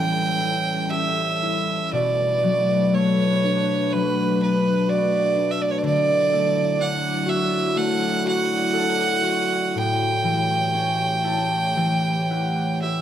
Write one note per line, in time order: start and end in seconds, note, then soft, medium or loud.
0.00 1.75 A2 medium
0.00 1.98 E3 soft
0.00 1.89 G3 medium
0.00 1.78 C#4 soft
0.00 1.89 C#4 medium
0.00 0.40 E4 soft
0.00 1.89 A4 medium
0.00 0.91 G5 medium
0.40 1.42 E4 soft
0.90 2.49 G4 soft
0.90 1.92 E5 medium
1.43 4.04 E4 soft
1.92 5.83 B2 medium
1.92 5.81 A3 medium
1.92 5.82 D4 medium
1.92 5.81 B4 medium
1.92 2.96 D5 medium
2.43 3.92 F#3 soft
2.93 6.26 A3 soft
2.93 3.94 C#5 medium
3.44 4.41 D4 medium
3.93 5.90 F#3 soft
3.93 4.41 B4 medium
4.42 5.35 D4 medium
4.42 4.91 B4 medium
4.87 7.26 F#4 medium
4.87 5.53 D5 medium
5.35 6.78 D4 soft
5.51 5.63 E5 medium
5.62 5.72 D5 medium
5.71 5.80 C#5 medium
5.78 5.85 D5 medium
5.83 9.73 D3 medium
5.83 9.71 F#3 medium
5.83 9.71 E4 medium
5.83 9.70 D5 medium
5.83 6.83 D5 loud
6.32 7.75 A3 soft
6.79 9.59 D4 medium
6.79 7.31 F#5 medium
7.26 8.24 F#4 medium
7.26 7.79 E5 medium
7.76 11.09 A3 medium
7.76 8.26 F#5 medium
8.25 9.22 F#4 medium
8.25 9.79 F#5 loud
8.73 10.93 A4 medium
9.23 11.67 F#4 soft
9.73 13.02 A2 medium
9.73 13.02 A3 medium
9.73 13.02 G4 medium
9.73 13.02 C#5 medium
9.78 12.82 G5 medium
10.23 11.76 E3 soft
10.73 13.02 C#4 soft
11.24 12.30 E4 soft
11.24 12.69 A5 medium
11.76 13.02 E3 soft
11.76 12.36 G5 medium
12.30 13.02 E4 soft
12.30 12.89 F#5 medium
12.82 13.02 G4 soft
12.82 13.02 E5 medium